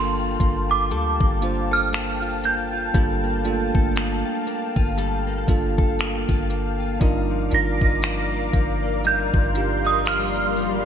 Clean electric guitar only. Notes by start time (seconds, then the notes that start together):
Already playing: D3 G3 A#3 F4 A4
0.19 F4
0.40 A#3
0.70 F4
0.91 G3 A4
1.20 A#3
1.42 F4
1.71 A4
1.93 A#3
2.22 F4
2.44 A#3
2.73 F4
2.95 G3 A4
3.24 A#3
3.45 F4
3.75 A4
3.96 A#3
4.25 F4
4.47 A#3
4.76 F4
4.98 G3 A4
5.27 A#3
5.48 F4
5.78 A4
5.99 A#3
6.29 F4
6.50 A#3
6.80 F4
7.01 G2 D#4
7.31 F3
7.52 A#3
7.81 D#4
8.03 F3
8.32 A#3
8.54 F3
8.83 A#3
9.04 G2 D#4
9.34 F3
9.55 A#3
9.85 D#4
10.06 F3
10.36 A#3
10.57 F3